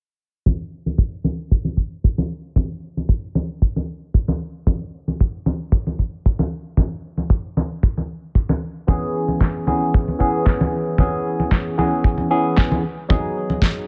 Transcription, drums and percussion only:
0.46 kick, high conga
0.86 high conga
0.98 kick
1.24 high conga
1.51 kick
1.65 high conga
1.77 kick
2.04 kick
2.18 high conga
2.56 kick, high conga
2.97 high conga
3.09 kick
3.35 high conga
3.62 kick
3.76 high conga
4.14 kick
4.28 high conga
4.67 kick, high conga
5.08 high conga
5.20 kick
5.46 high conga
5.72 kick
5.87 high conga
5.99 kick
6.26 kick
6.39 high conga
6.77 kick, high conga
7.17 high conga
7.30 kick
7.57 high conga
7.83 kick
7.97 high conga
8.35 kick
8.49 high conga
8.88 kick, high conga
9.28 high conga
9.41 kick, snare
9.67 high conga
9.94 kick
10.08 high conga
10.20 kick
10.46 kick, snare
10.61 high conga
10.98 kick, high conga
11.40 high conga
11.51 kick, snare
11.79 high conga
12.04 kick
12.18 high conga
12.57 kick, snare
12.72 high conga
13.10 kick, high conga
13.50 high conga
13.62 kick, snare

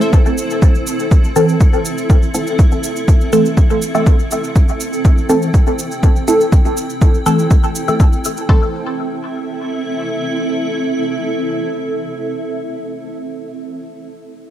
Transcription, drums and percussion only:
0.01 cabasa
0.13 kick, cabasa
0.26 cabasa
0.38 cabasa
0.50 cabasa
0.62 kick, cabasa
0.75 cabasa
0.87 cabasa
1.00 cabasa
1.11 kick, cabasa
1.24 cabasa
1.36 cabasa
1.49 cabasa
1.60 kick, cabasa
1.73 cabasa
1.85 cabasa
1.98 cabasa
2.10 kick, cabasa
2.22 cabasa
2.34 cabasa
2.47 cabasa
2.59 kick, cabasa
2.72 cabasa
2.83 cabasa
2.96 cabasa
3.08 kick, cabasa
3.21 cabasa
3.33 cabasa
3.45 cabasa
3.57 kick, cabasa
3.70 cabasa
3.82 cabasa
3.95 cabasa
4.06 kick, cabasa
4.19 cabasa
4.31 cabasa
4.44 cabasa
4.56 kick, cabasa
4.68 cabasa
4.80 cabasa
4.93 cabasa
5.05 kick, cabasa
5.18 cabasa
5.29 cabasa
5.42 cabasa
5.54 kick, cabasa
5.67 cabasa
5.79 cabasa
5.91 cabasa
6.03 kick, cabasa
6.16 cabasa
6.28 cabasa
6.41 cabasa
6.52 kick, cabasa
6.65 cabasa
6.77 cabasa
6.90 cabasa
7.02 kick, cabasa
7.14 cabasa
7.26 cabasa
7.39 cabasa
7.51 kick, cabasa
7.63 cabasa
7.75 cabasa
7.88 cabasa
8.00 kick, cabasa
8.13 cabasa
8.24 cabasa
8.37 cabasa
8.49 kick

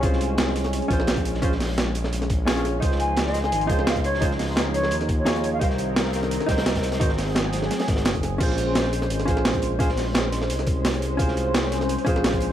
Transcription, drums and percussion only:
0.03 kick, closed hi-hat
0.13 snare
0.21 closed hi-hat
0.38 snare, closed hi-hat
0.47 snare
0.55 snare, closed hi-hat
0.64 snare, closed hi-hat
0.73 closed hi-hat
0.82 closed hi-hat
0.91 kick, closed hi-hat
1.00 snare
1.07 snare, closed hi-hat
1.17 kick, closed hi-hat
1.25 closed hi-hat
1.34 snare
1.42 kick, closed hi-hat
1.52 snare
1.60 snare, closed hi-hat, open hi-hat
1.78 snare, closed hi-hat
1.95 closed hi-hat
2.04 snare
2.13 closed hi-hat
2.22 snare, closed hi-hat
2.30 kick, closed hi-hat
2.48 snare, closed hi-hat
2.57 closed hi-hat
2.65 snare, closed hi-hat
2.82 kick, closed hi-hat
2.91 snare
3.00 closed hi-hat
3.17 snare, closed hi-hat
3.27 snare
3.34 snare, closed hi-hat
3.44 snare, closed hi-hat
3.52 closed hi-hat
3.61 closed hi-hat
3.70 kick, closed hi-hat
3.79 snare
3.87 snare, closed hi-hat
3.96 kick, closed hi-hat
4.04 closed hi-hat
4.14 snare
4.22 kick, closed hi-hat
4.31 snare
4.39 snare, closed hi-hat, open hi-hat
4.56 snare, closed hi-hat
4.74 closed hi-hat
4.83 snare
4.91 closed hi-hat
5.01 snare, closed hi-hat
5.09 kick, closed hi-hat
5.26 snare, closed hi-hat
5.36 closed hi-hat
5.44 closed hi-hat
5.61 kick, closed hi-hat
5.70 snare
5.78 closed hi-hat
5.96 snare, closed hi-hat
6.05 snare
6.13 snare, closed hi-hat
6.23 snare, closed hi-hat
6.31 closed hi-hat
6.40 snare, closed hi-hat
6.49 kick, snare, closed hi-hat
6.58 snare, closed hi-hat
6.66 snare, closed hi-hat
6.75 kick, snare, closed hi-hat
6.83 snare, closed hi-hat
6.92 snare, closed hi-hat
7.01 kick, closed hi-hat
7.09 snare
7.18 snare, closed hi-hat, open hi-hat
7.35 snare, closed hi-hat
7.53 snare, closed hi-hat
7.62 snare
7.71 snare, closed hi-hat
7.79 snare, closed hi-hat
7.88 kick, snare, closed hi-hat
7.96 snare, closed hi-hat
8.05 snare, closed hi-hat
8.15 kick, snare, closed hi-hat
8.23 snare, closed hi-hat
8.41 kick, closed hi-hat, crash
8.49 snare
8.58 closed hi-hat
8.75 snare, closed hi-hat
8.84 snare
8.93 closed hi-hat
9.02 snare, closed hi-hat
9.10 closed hi-hat
9.20 snare, closed hi-hat
9.28 kick, closed hi-hat
9.37 snare
9.45 snare, closed hi-hat
9.54 kick, closed hi-hat
9.62 closed hi-hat
9.80 kick, closed hi-hat
9.89 snare
9.97 snare, closed hi-hat, open hi-hat
10.15 snare, closed hi-hat
10.32 snare, closed hi-hat
10.41 snare
10.50 closed hi-hat
10.59 snare, closed hi-hat
10.67 kick, closed hi-hat
10.85 snare, closed hi-hat
10.94 closed hi-hat
11.02 closed hi-hat
11.19 kick, closed hi-hat
11.28 snare
11.37 closed hi-hat
11.54 snare, closed hi-hat
11.64 snare
11.71 snare, closed hi-hat
11.81 snare, closed hi-hat
11.89 closed hi-hat
11.99 closed hi-hat
12.06 kick, closed hi-hat
12.16 snare
12.24 snare, closed hi-hat
12.33 kick, closed hi-hat
12.41 closed hi-hat

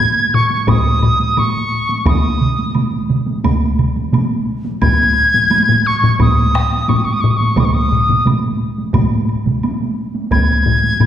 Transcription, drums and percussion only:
0.34 taiko low-mid
0.50 taiko high
0.68 taiko, taiko low-mid, taiko high, high woodblock
1.02 taiko low-mid, high woodblock
1.20 taiko high
1.37 taiko low-mid, taiko high, high woodblock
1.89 taiko high
2.06 taiko, taiko mid, taiko high, high woodblock
2.41 taiko mid
2.59 taiko high
2.75 taiko mid, taiko high, high woodblock
3.10 taiko mid
3.26 taiko high
3.44 taiko, taiko mid, taiko high, high woodblock
3.79 taiko mid, high woodblock
3.96 taiko high
4.12 taiko mid, taiko high, high woodblock
4.65 taiko high
4.82 taiko, taiko low-mid, taiko high, high woodblock
5.34 taiko low-mid, taiko high
5.50 taiko high, high woodblock
5.68 taiko low-mid
6.02 taiko low-mid, taiko high
6.20 taiko, taiko low-mid, taiko high, high woodblock
6.54 taiko rim, high woodblock
6.72 taiko high
6.88 taiko low-mid, taiko high, high woodblock
7.24 taiko low-mid
7.40 taiko high
7.57 taiko, taiko low-mid, taiko mid, taiko high, high woodblock
7.92 taiko low-mid, taiko mid
8.08 taiko low-mid, taiko mid, taiko high
8.25 taiko low-mid, taiko mid, taiko high, high woodblock
8.78 taiko high
8.94 taiko, taiko low-mid, taiko mid, taiko high, high woodblock
9.29 high woodblock
9.46 taiko low-mid, taiko mid, taiko high
9.63 taiko high, high woodblock
9.81 taiko high
10.15 taiko high
10.31 taiko, taiko low-mid, taiko high, high woodblock
10.66 taiko low-mid
10.83 taiko high
11.00 taiko low-mid, taiko high, high woodblock

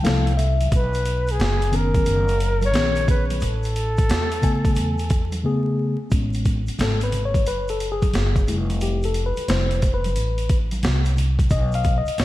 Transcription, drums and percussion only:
0.05 snare, closed hi-hat, shaker
0.26 closed hi-hat, shaker
0.39 closed hi-hat, low conga, shaker
0.61 closed hi-hat, high conga, shaker
0.72 kick, closed hi-hat, shaker
0.93 closed hi-hat, shaker
1.05 closed hi-hat, shaker
1.27 closed hi-hat, shaker
1.39 snare, closed hi-hat, low conga, shaker
1.61 closed hi-hat, shaker
1.72 closed hi-hat, low conga, shaker
1.95 kick, closed hi-hat, high conga, shaker
2.06 closed hi-hat, high conga, shaker
2.28 closed hi-hat, shaker
2.40 closed hi-hat, shaker
2.61 closed hi-hat, high conga, shaker
2.74 snare, closed hi-hat, shaker
2.95 closed hi-hat, shaker
3.08 kick, closed hi-hat, low conga, shaker
3.30 closed hi-hat, high conga, shaker
3.40 closed hi-hat, shaker
3.63 closed hi-hat, shaker
3.75 closed hi-hat, shaker
3.97 kick, closed hi-hat, shaker
4.10 snare, closed hi-hat, low conga, shaker
4.31 closed hi-hat, shaker
4.42 kick, closed hi-hat, low conga, shaker
4.65 kick, closed hi-hat, high conga, shaker
4.75 closed hi-hat, high conga, shaker
4.98 closed hi-hat, shaker
5.09 kick, closed hi-hat, shaker
5.32 closed hi-hat, high conga, shaker
6.11 kick, closed hi-hat, shaker
6.33 closed hi-hat, shaker
6.45 kick, closed hi-hat, shaker
6.67 closed hi-hat, shaker
6.79 snare, closed hi-hat, low conga, shaker
7.00 closed hi-hat, shaker
7.12 closed hi-hat, low conga, shaker
7.34 kick, closed hi-hat, high conga, shaker
7.46 closed hi-hat, shaker
7.68 closed hi-hat, shaker
7.80 closed hi-hat, shaker
8.02 kick, closed hi-hat, high conga, shaker
8.13 snare, closed hi-hat, shaker
8.36 kick, closed hi-hat, shaker
8.48 closed hi-hat, low conga, shaker
8.70 closed hi-hat, high conga, shaker
8.80 closed hi-hat, shaker
9.03 closed hi-hat, shaker
9.14 closed hi-hat, shaker
9.36 closed hi-hat, shaker
9.48 snare, closed hi-hat, low conga, shaker
9.71 closed hi-hat, shaker
9.82 kick, closed hi-hat, low conga, shaker
10.04 closed hi-hat, high conga, shaker
10.16 closed hi-hat, shaker
10.38 closed hi-hat, shaker
10.49 kick, closed hi-hat, shaker
10.71 closed hi-hat, high conga, shaker
10.83 snare, closed hi-hat, shaker
11.05 closed hi-hat, shaker
11.17 closed hi-hat, low conga, shaker
11.39 kick, closed hi-hat, high conga, shaker
11.50 kick, closed hi-hat, shaker
11.72 closed hi-hat, shaker
11.83 kick, closed hi-hat, shaker
12.06 closed hi-hat, shaker
12.18 snare, closed hi-hat, low conga, shaker

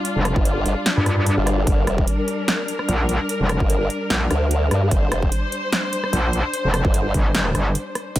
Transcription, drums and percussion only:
0.05 closed hi-hat
0.25 cross-stick, closed hi-hat
0.36 kick
0.45 closed hi-hat
0.66 closed hi-hat
0.86 snare, closed hi-hat
1.06 cross-stick, closed hi-hat
1.26 closed hi-hat
1.47 cross-stick, closed hi-hat
1.67 kick, closed hi-hat
1.87 cross-stick, closed hi-hat
1.98 kick
2.07 closed hi-hat
2.28 closed hi-hat
2.48 snare, closed hi-hat
2.68 closed hi-hat
2.79 cross-stick
2.89 closed hi-hat
3.09 closed hi-hat
3.29 closed hi-hat
3.49 cross-stick, closed hi-hat
3.60 kick
3.70 closed hi-hat
3.90 closed hi-hat
4.10 snare, closed hi-hat
4.31 cross-stick, closed hi-hat
4.51 closed hi-hat
4.71 cross-stick, closed hi-hat
4.91 kick, closed hi-hat
5.12 cross-stick, closed hi-hat
5.22 kick
5.32 closed hi-hat
5.52 closed hi-hat
5.73 snare, closed hi-hat
5.93 closed hi-hat
6.04 cross-stick
6.13 closed hi-hat
6.33 closed hi-hat
6.54 closed hi-hat
6.74 cross-stick, closed hi-hat
6.85 kick
6.94 closed hi-hat
7.14 kick, closed hi-hat
7.35 snare, closed hi-hat
7.45 cross-stick
7.55 cross-stick, closed hi-hat
7.75 closed hi-hat
7.95 cross-stick, closed hi-hat
8.16 kick, closed hi-hat, crash

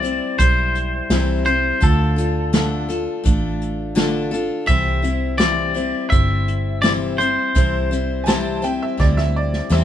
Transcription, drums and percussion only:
0.04 closed hi-hat
0.40 kick, closed hi-hat
0.75 closed hi-hat
1.10 snare, closed hi-hat
1.46 closed hi-hat
1.82 kick, closed hi-hat
2.18 closed hi-hat
2.54 snare, closed hi-hat
2.90 closed hi-hat
3.25 kick, closed hi-hat
3.62 closed hi-hat
3.97 snare, closed hi-hat
4.34 closed hi-hat
4.68 kick, closed hi-hat
5.04 closed hi-hat
5.40 snare, closed hi-hat
5.77 closed hi-hat
6.12 kick, closed hi-hat
6.48 closed hi-hat
6.84 snare, closed hi-hat
7.20 closed hi-hat
7.56 kick, closed hi-hat
7.92 closed hi-hat
8.28 snare, closed hi-hat
8.64 closed hi-hat
8.99 kick, snare
9.18 snare
9.53 snare
9.71 snare

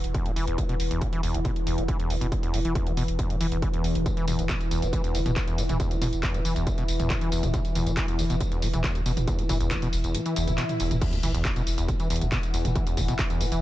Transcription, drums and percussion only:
0.04 closed hi-hat
0.14 kick, closed hi-hat
0.26 closed hi-hat
0.36 open hi-hat
0.47 closed hi-hat
0.58 kick, closed hi-hat
0.69 closed hi-hat
0.80 open hi-hat
0.91 closed hi-hat
1.01 kick, closed hi-hat
1.13 closed hi-hat
1.23 open hi-hat
1.34 closed hi-hat
1.45 kick, closed hi-hat
1.56 closed hi-hat
1.67 open hi-hat
1.78 closed hi-hat
1.88 kick, closed hi-hat
2.00 closed hi-hat
2.10 open hi-hat
2.21 closed hi-hat
2.32 kick, closed hi-hat
2.43 closed hi-hat
2.54 open hi-hat
2.65 closed hi-hat
2.75 kick, closed hi-hat
2.87 closed hi-hat
2.97 open hi-hat
3.08 closed hi-hat
3.19 kick, closed hi-hat
3.30 closed hi-hat
3.41 open hi-hat
3.52 closed hi-hat
3.62 kick, closed hi-hat
3.74 closed hi-hat
3.84 open hi-hat
3.95 closed hi-hat
4.06 kick, closed hi-hat, tambourine
4.17 closed hi-hat, tambourine
4.28 mid tom, open hi-hat, tambourine
4.39 closed hi-hat, tambourine
4.49 kick, clap, closed hi-hat, tambourine
4.61 closed hi-hat, tambourine
4.71 open hi-hat, tambourine
4.82 closed hi-hat, tambourine
4.93 kick, closed hi-hat, tambourine
5.04 closed hi-hat, tambourine
5.15 open hi-hat, tambourine
5.26 closed hi-hat, mid tom, tambourine
5.36 kick, clap, closed hi-hat, tambourine
5.48 closed hi-hat, tambourine
5.58 open hi-hat, tambourine
5.69 closed hi-hat, mid tom, tambourine
5.80 kick, closed hi-hat, tambourine
5.91 closed hi-hat, tambourine
6.02 mid tom, open hi-hat, tambourine
6.13 closed hi-hat, tambourine
6.23 kick, clap, closed hi-hat, tambourine
6.34 closed hi-hat, tambourine
6.45 open hi-hat, tambourine
6.56 closed hi-hat, tambourine
6.67 kick, closed hi-hat, tambourine
6.78 closed hi-hat, tambourine
6.88 open hi-hat, tambourine
7.00 closed hi-hat, mid tom, tambourine
7.10 kick, clap, closed hi-hat, tambourine
7.21 closed hi-hat, tambourine
7.32 open hi-hat, tambourine
7.43 closed hi-hat, mid tom, tambourine
7.54 kick, closed hi-hat, tambourine
7.65 closed hi-hat, tambourine
7.75 mid tom, open hi-hat, tambourine
7.87 closed hi-hat, tambourine
7.97 kick, clap, closed hi-hat, tambourine
8.08 closed hi-hat, tambourine
8.19 open hi-hat, tambourine
8.30 closed hi-hat, tambourine
8.41 kick, closed hi-hat, tambourine
8.52 closed hi-hat, tambourine
8.62 open hi-hat, tambourine
8.73 closed hi-hat, mid tom, tambourine
8.84 kick, clap, closed hi-hat, tambourine
8.95 closed hi-hat, tambourine
9.06 open hi-hat, tambourine
9.17 closed hi-hat, mid tom, tambourine
9.28 kick, closed hi-hat, tambourine
9.39 closed hi-hat, tambourine
9.49 kick, mid tom, open hi-hat, tambourine
9.60 closed hi-hat, tambourine
9.71 kick, clap, closed hi-hat, tambourine
9.82 closed hi-hat, tambourine
9.93 open hi-hat, tambourine
10.04 closed hi-hat, tambourine
10.15 closed hi-hat, tambourine
10.26 closed hi-hat, tambourine
10.36 open hi-hat, tambourine
10.47 closed hi-hat, mid tom, tambourine
10.58 clap, closed hi-hat, tambourine
10.69 closed hi-hat, mid tom, tambourine
10.80 open hi-hat, tambourine
10.91 closed hi-hat, mid tom, tambourine
11.02 kick, closed hi-hat, crash, tambourine
11.13 closed hi-hat, tambourine
11.23 mid tom, open hi-hat, tambourine
11.34 closed hi-hat, tambourine
11.45 kick, clap, closed hi-hat, tambourine
11.56 closed hi-hat, tambourine
11.67 open hi-hat, tambourine
11.78 closed hi-hat, tambourine
11.88 kick, closed hi-hat, tambourine
12.00 closed hi-hat, tambourine
12.10 open hi-hat, tambourine
12.16 closed hi-hat
12.21 closed hi-hat, mid tom, tambourine
12.32 kick, clap, closed hi-hat, tambourine
12.43 closed hi-hat, tambourine
12.54 open hi-hat, tambourine
12.65 closed hi-hat, mid tom, tambourine
12.75 kick, closed hi-hat, tambourine
12.87 closed hi-hat, tambourine
12.97 kick, mid tom, open hi-hat, tambourine
13.08 closed hi-hat, tambourine
13.19 kick, clap, closed hi-hat, tambourine
13.30 closed hi-hat, tambourine
13.41 open hi-hat, tambourine
13.52 closed hi-hat, tambourine

